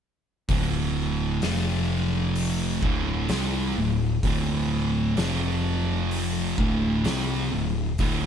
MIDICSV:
0, 0, Header, 1, 4, 480
1, 0, Start_track
1, 0, Key_signature, -1, "minor"
1, 0, Tempo, 937500
1, 250, Time_signature, 4, 2, 24, 8
1, 4230, End_track
2, 0, Start_track
2, 0, Title_t, "Distorted electric guitar"
2, 0, Program_c, 0, 30
2, 253, Note_on_c, 0, 50, 114
2, 254, Note_on_c, 0, 38, 89
2, 255, Note_on_c, 0, 45, 98
2, 728, Note_off_c, 0, 38, 0
2, 728, Note_on_c, 0, 41, 97
2, 733, Note_off_c, 0, 45, 0
2, 733, Note_on_c, 0, 48, 88
2, 737, Note_off_c, 0, 50, 0
2, 737, Note_on_c, 0, 53, 92
2, 1443, Note_off_c, 0, 41, 0
2, 1445, Note_off_c, 0, 48, 0
2, 1445, Note_on_c, 0, 38, 90
2, 1447, Note_off_c, 0, 53, 0
2, 1449, Note_on_c, 0, 45, 96
2, 1449, Note_on_c, 0, 50, 93
2, 1681, Note_off_c, 0, 38, 0
2, 1683, Note_off_c, 0, 45, 0
2, 1683, Note_off_c, 0, 50, 0
2, 1687, Note_on_c, 0, 48, 83
2, 1690, Note_on_c, 0, 55, 100
2, 1692, Note_on_c, 0, 60, 98
2, 1922, Note_off_c, 0, 48, 0
2, 1924, Note_off_c, 0, 55, 0
2, 1924, Note_off_c, 0, 60, 0
2, 1930, Note_on_c, 0, 38, 63
2, 1932, Note_on_c, 0, 45, 72
2, 2123, Note_off_c, 0, 38, 0
2, 2124, Note_off_c, 0, 45, 0
2, 2174, Note_on_c, 0, 38, 104
2, 2176, Note_on_c, 0, 45, 107
2, 2181, Note_on_c, 0, 50, 112
2, 2646, Note_off_c, 0, 38, 0
2, 2647, Note_off_c, 0, 45, 0
2, 2649, Note_off_c, 0, 50, 0
2, 2652, Note_on_c, 0, 41, 90
2, 2652, Note_on_c, 0, 53, 99
2, 2656, Note_on_c, 0, 48, 90
2, 3365, Note_off_c, 0, 41, 0
2, 3365, Note_off_c, 0, 53, 0
2, 3367, Note_off_c, 0, 48, 0
2, 3370, Note_on_c, 0, 38, 88
2, 3370, Note_on_c, 0, 45, 92
2, 3370, Note_on_c, 0, 50, 97
2, 3603, Note_off_c, 0, 38, 0
2, 3604, Note_off_c, 0, 45, 0
2, 3604, Note_off_c, 0, 50, 0
2, 3605, Note_on_c, 0, 48, 98
2, 3608, Note_on_c, 0, 55, 94
2, 3610, Note_on_c, 0, 60, 111
2, 3841, Note_off_c, 0, 48, 0
2, 3843, Note_off_c, 0, 55, 0
2, 3844, Note_off_c, 0, 60, 0
2, 3850, Note_on_c, 0, 38, 59
2, 3855, Note_on_c, 0, 45, 78
2, 4043, Note_off_c, 0, 38, 0
2, 4045, Note_off_c, 0, 45, 0
2, 4096, Note_on_c, 0, 38, 98
2, 4098, Note_on_c, 0, 50, 105
2, 4099, Note_on_c, 0, 45, 114
2, 4230, Note_off_c, 0, 38, 0
2, 4230, Note_off_c, 0, 45, 0
2, 4230, Note_off_c, 0, 50, 0
2, 4230, End_track
3, 0, Start_track
3, 0, Title_t, "Picked electric bass"
3, 0, Program_c, 1, 34
3, 249, Note_on_c, 1, 26, 88
3, 710, Note_off_c, 1, 26, 0
3, 727, Note_on_c, 1, 29, 92
3, 1429, Note_off_c, 1, 29, 0
3, 1442, Note_on_c, 1, 26, 93
3, 1670, Note_off_c, 1, 26, 0
3, 1685, Note_on_c, 1, 36, 94
3, 1911, Note_off_c, 1, 36, 0
3, 1922, Note_on_c, 1, 26, 76
3, 2150, Note_off_c, 1, 26, 0
3, 2164, Note_on_c, 1, 26, 90
3, 2627, Note_off_c, 1, 26, 0
3, 2640, Note_on_c, 1, 29, 84
3, 3346, Note_off_c, 1, 29, 0
3, 3368, Note_on_c, 1, 26, 99
3, 3593, Note_off_c, 1, 26, 0
3, 3613, Note_on_c, 1, 36, 93
3, 3836, Note_off_c, 1, 36, 0
3, 3853, Note_on_c, 1, 26, 76
3, 4076, Note_off_c, 1, 26, 0
3, 4088, Note_on_c, 1, 26, 98
3, 4230, Note_off_c, 1, 26, 0
3, 4230, End_track
4, 0, Start_track
4, 0, Title_t, "Drums"
4, 249, Note_on_c, 9, 46, 57
4, 250, Note_on_c, 9, 36, 99
4, 300, Note_off_c, 9, 46, 0
4, 301, Note_off_c, 9, 36, 0
4, 727, Note_on_c, 9, 46, 60
4, 732, Note_on_c, 9, 38, 102
4, 778, Note_off_c, 9, 46, 0
4, 783, Note_off_c, 9, 38, 0
4, 1206, Note_on_c, 9, 46, 62
4, 1257, Note_off_c, 9, 46, 0
4, 1447, Note_on_c, 9, 36, 104
4, 1498, Note_off_c, 9, 36, 0
4, 1683, Note_on_c, 9, 46, 60
4, 1688, Note_on_c, 9, 38, 112
4, 1734, Note_off_c, 9, 46, 0
4, 1739, Note_off_c, 9, 38, 0
4, 2167, Note_on_c, 9, 36, 102
4, 2168, Note_on_c, 9, 46, 59
4, 2218, Note_off_c, 9, 36, 0
4, 2219, Note_off_c, 9, 46, 0
4, 2647, Note_on_c, 9, 46, 53
4, 2652, Note_on_c, 9, 38, 112
4, 2698, Note_off_c, 9, 46, 0
4, 2703, Note_off_c, 9, 38, 0
4, 3129, Note_on_c, 9, 46, 55
4, 3181, Note_off_c, 9, 46, 0
4, 3369, Note_on_c, 9, 36, 104
4, 3420, Note_off_c, 9, 36, 0
4, 3608, Note_on_c, 9, 46, 60
4, 3613, Note_on_c, 9, 38, 108
4, 3659, Note_off_c, 9, 46, 0
4, 3664, Note_off_c, 9, 38, 0
4, 4087, Note_on_c, 9, 46, 54
4, 4091, Note_on_c, 9, 36, 106
4, 4138, Note_off_c, 9, 46, 0
4, 4142, Note_off_c, 9, 36, 0
4, 4230, End_track
0, 0, End_of_file